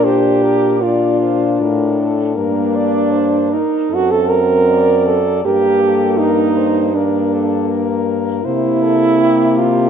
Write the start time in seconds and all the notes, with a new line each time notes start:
Already playing: A#2 D4
0.04 G4 C5
0.44 A#4
0.81 D4 F4 D5
1.21 C5
1.61 A2 A#4
2.00 A4
2.35 G2 A#3 D4 A#4
2.75 D5
3.12 C5
3.51 D#4 A#4
3.90 F#2 C4 A4
3.94 F#4
4.11 A4
4.30 A#4
4.68 D5
5.06 A4
5.45 G2 A#3 G4 A#4
5.83 A4
6.19 D#4 A#4
6.56 C5
6.94 A#3 D4 A#4
7.34 A4
7.71 A#4
8.44 C3 A#3 E4 C5
8.83 A4
9.21 G4
9.58 F4